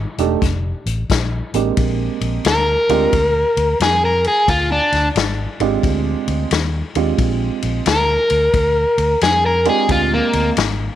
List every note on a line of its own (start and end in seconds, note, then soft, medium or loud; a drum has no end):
0.18 0.34 E1 loud
0.18 0.40 A3 medium
0.18 0.40 D4 medium
0.18 0.40 D#4 medium
0.18 0.40 G4 medium
0.18 closed hi-hat medium
0.42 0.72 F1 medium
0.42 kick loud
0.42 snare soft
0.42 closed hi-hat medium
0.86 1.02 A1 loud
0.86 closed hi-hat medium
1.10 1.40 A#1 medium
1.10 kick medium
1.10 snare loud
1.10 closed hi-hat medium
1.54 1.70 A1 medium
1.54 2.41 G#3 medium
1.54 2.41 A#3 medium
1.54 2.41 C4 medium
1.54 2.41 D4 medium
1.54 2.41 G4 medium
1.54 closed hi-hat medium
1.77 2.07 A#1 medium
1.77 kick loud
1.77 ride medium
2.21 2.37 A#1 medium
2.21 ride medium
2.45 2.75 D2 medium
2.45 3.77 A#4 loud
2.45 snare loud
2.45 ride medium
2.89 3.05 D2 medium
2.89 3.11 G#3 medium
2.89 3.11 C4 medium
2.89 3.11 D4 medium
2.89 3.11 F4 medium
2.89 3.11 G4 medium
2.89 ride medium
3.13 3.43 D2 medium
3.13 kick loud
3.13 ride medium
3.57 3.73 D2 medium
3.57 ride medium
3.80 4.26 F2 medium
3.80 4.03 G#4 medium
3.80 snare loud
3.80 ride medium
4.05 4.26 A#4 medium
4.24 4.49 G#4 medium
4.24 ride medium
4.48 4.78 D2 medium
4.48 4.71 F4 loud
4.48 kick loud
4.48 ride medium
4.72 5.07 D4 medium
4.92 5.08 D2 medium
4.92 snare soft
4.92 ride medium
5.15 5.45 G#1 loud
5.15 snare loud
5.15 ride medium
5.60 5.76 G#1 medium
5.60 6.47 G#3 medium
5.60 6.47 C4 medium
5.60 6.47 D4 medium
5.60 6.47 F4 medium
5.60 6.47 G4 medium
5.60 ride medium
5.83 6.13 D2 medium
5.83 kick loud
5.83 ride medium
6.28 6.44 D2 medium
6.28 ride medium
6.51 6.81 D#2 medium
6.51 snare loud
6.51 ride medium
6.95 7.11 D#2 medium
6.95 7.82 G#3 medium
6.95 7.82 C4 medium
6.95 7.82 D4 medium
6.95 7.82 F4 medium
6.95 7.82 G4 medium
6.95 ride medium
7.18 7.48 A#1 medium
7.18 kick loud
7.18 ride medium
7.62 7.79 A#1 medium
7.62 ride medium
7.86 8.16 D2 medium
7.86 9.19 A#4 loud
7.86 snare loud
7.86 ride medium
8.30 8.47 D2 medium
8.30 ride medium
8.54 8.84 D2 medium
8.54 kick loud
8.54 ride medium
8.98 9.14 D2 medium
8.98 ride medium
9.21 9.67 F2 medium
9.21 9.44 G#4 medium
9.21 snare medium
9.21 ride medium
9.46 9.67 A#4 loud
9.65 10.52 G#3 medium
9.65 10.53 C4 medium
9.65 10.53 D4 medium
9.65 10.53 F4 medium
9.65 10.53 G4 medium
9.65 ride medium
9.69 9.90 G#4 medium
9.89 10.19 D2 loud
9.89 10.12 F4 medium
9.89 kick loud
9.89 ride medium
10.14 10.49 A#3 medium
10.33 10.50 D2 medium
10.33 ride medium
10.57 10.87 G#1 medium
10.57 snare loud
10.57 ride medium